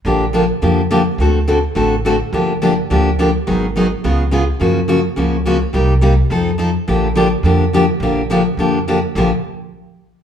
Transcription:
X:1
M:4/4
L:1/8
Q:"Swing" 1/4=211
K:Bb
V:1 name="Steel-string acoustic guitar"
[D,F,B,DG] z [D,F,B,DG] z [D,F,B,DG] z [D,F,B,DG] z | [D,A,C^FA] z [D,A,CFA] z [D,A,CFA] z [D,A,CFA] z | [D,F,B,DG] z [D,F,B,DG] z [D,F,B,DG] z [D,F,B,DG] z | [E,_G,_CE_A] z [E,G,CEA] z [_D,_A,CFA] z [D,A,CFA] z |
[_D,F,B,_D_G] z [D,F,B,DG] z [D,F,B,DG] z [D,F,B,DG] z | [C,G,B,EG] z [C,G,B,EG] z [F,CEA] z [F,CEA] z | [D,F,B,DG] z [D,F,B,DG] z [D,F,B,DG] z [D,F,B,DG] z | [D,F,B,DG] z [D,F,B,DG] z [D,F,B,DG] z [D,F,B,DG] z |
[B,,D,F,B,DG] z6 z |]
V:2 name="Upright bass" clef=bass
B,,,4 F,,4 | D,,4 A,,,4 | G,,,4 D,,4 | _A,,,4 _D,,4 |
_G,,4 _D,,4 | C,,4 F,,4 | B,,,4 F,,4 | B,,,4 F,,4 |
B,,, z6 z |]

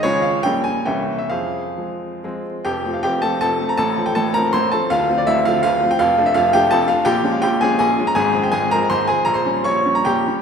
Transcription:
X:1
M:3/4
L:1/16
Q:1/4=159
K:Fm
V:1 name="Grand piano"
[FAd]2 f2 g2 a2 [d=eg]3 e | [Acf]8- [Acf]2 z2 | [K:F] [Gg]3 f [Gg]2 [Aa]2 [Aa]3 b | [Aa]3 g [Aa]2 [Bb]2 [cc']2 [Aa]2 |
[Ff]3 d [Ee]2 [Ff]2 [Ff]3 g | [Ff]3 e [Ff]2 [Gg]2 [Aa]2 [Ff]2 | [K:Fm] [Gg]3 f [Gg]2 [Aa]2 [Aa]3 b | [Aa]3 g [Aa]2 [Bb]2 [cc']2 [Aa]2 |
b [cc']3 [dd']3 b [Gg]4 |]
V:2 name="Grand piano" clef=bass
[D,,F,A,D]4 [B,,,G,B,D]4 [C,,=E,B,D]4 | F,,4 [F,A,C]4 [F,A,C]4 | [K:F] [F,,,F,,]2 [F,A,C]2 [F,,,F,,]2 [F,A,C]2 [F,,,F,,]2 [F,A,C]2 | [A,,,A,,]2 [F,A,C]2 [A,,,A,,]2 [F,A,C]2 [A,,,A,,]2 [F,A,C]2 |
[D,,,D,,]2 [F,A,C]2 [D,,,D,,]2 [F,A,C]2 [D,,,D,,]2 [F,A,C]2 | [F,,,F,,]2 [F,A,D]2 [F,,,F,,]2 [F,A,D]2 [F,,,F,,]2 [F,A,D]2 | [K:Fm] [B,,,B,,]2 [F,A,D]2 [B,,,B,,]2 [F,A,D]2 [B,,,B,,]2 [F,A,D]2 | [A,,,A,,]2 [F,A,C]2 [A,,,A,,]2 [F,A,C]2 [A,,,A,,]2 [F,A,C]2 |
[B,,,B,,]2 [G,D]2 [B,,,B,,]2 [G,D]2 [B,,,B,,]2 [G,D]2 |]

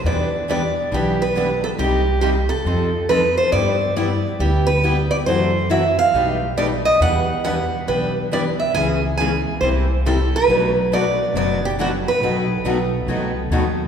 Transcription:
X:1
M:4/4
L:1/8
Q:"Swing" 1/4=138
K:Em
V:1 name="Steel-string acoustic guitar"
d2 d2 G B2 A | G2 G A3 B c | d2 d2 G B2 d | c2 e =f3 d ^d |
f2 f2 B z d e | ^g2 g2 c z A B- | B2 d2 d G F B- | B6 z2 |]
V:2 name="Steel-string acoustic guitar"
[E,G,DEB] z [E,G,DEB] z [E,G,DEB] z [E,G,DEB] z | [C,G,_B,_EG] z [C,G,B,EG] z [=F,CEA] z [F,CEA] z | [G,B,EG] z [G,B,EG] z [G,B,EG] z [G,B,EG] z | [F,CEA] z [F,CEA] z [B,,G,A,^DGB] z [B,,G,A,DGB] z |
[E,G,DEB] z [E,G,DEB] z [E,G,DEB] z [E,G,DEB] z | [^C,^G,B,E^G] z [C,G,B,EG] z [=C,=G,_B,E=G] z [C,G,B,EG] z | [B,,F,A,DFB] z [B,,F,A,DFB] z [B,,F,A,DFB] z [B,,F,A,DFB] z | [B,,^D,F,B,^DA] z [B,,D,F,B,DA] z [B,,D,F,B,DA] z [B,,D,F,B,DA] z |]
V:3 name="Steel-string acoustic guitar"
[E,B,DG] z [E,B,DG] z [E,B,DG] z [E,B,DG] z | [C,G,_B,_EG] z [C,G,B,EG] z [=F,CEA] z [F,CEA] z | [G,B,EG] z [G,B,EG] z [G,B,EG] z [G,B,EG] z | [C,E,A,EF] z [C,E,A,EF] z [B,,G,A,^DG] z [B,,G,A,DG] z |
[E,B,DG] z [E,B,DG] z [E,B,DG] z [E,B,DG] z | [^C,E,B,^C^G] z [C,E,B,CG] z [=C,=G,_B,E=G] z [C,G,B,EG] z | [B,,F,A,DF] z [B,,F,A,DF] z [B,,F,A,DF] z [B,,F,A,DF] z | [B,,F,A,^DF] z [B,,F,A,DF] z [B,,F,A,DF] z [B,,F,A,DF] z |]
V:4 name="Upright bass" clef=bass
E,,4 B,,,4 | C,,4 =F,,4 | G,,4 D,,4 | F,,4 B,,,4 |
E,,4 B,,,4 | ^C,,4 =C,,4 | B,,,4 F,,,4 | B,,,2 B,,,2 C,,2 ^D,,2 |]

